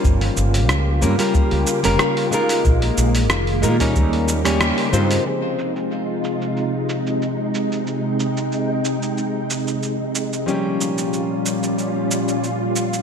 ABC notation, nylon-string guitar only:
X:1
M:4/4
L:1/16
Q:"Swing 16ths" 1/4=92
K:Fm
V:1 name="Nylon-string guitar"
[G,B,DFB]6 [G,B,DFB] [G,B,DFB]4 [G,B,DFB]3 [A,B,EFB]2- | [A,B,EFB]6 [A,B,EFB] [G,B,DEB]4 [G,B,DEB]3 [A,CEFc]2 | [F,A,CEA]16- | [F,A,CEA]16 |
[F,G,B,DG]16 |]